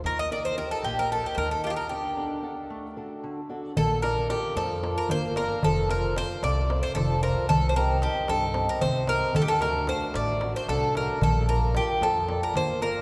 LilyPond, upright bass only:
\new Staff \with { instrumentName = "Upright bass" } { \clef bass \time 7/8 \key bes \major \tempo 4 = 113 ees,4. bes,,4 ees,4 | r2. r8 | bes,,4. f,4 g,,4 | f,,4. c,4 f,,4 |
c,4. g,4 c,4 | d,4. a,,4 c,4 | bes,,4. f,4 g,,4 | }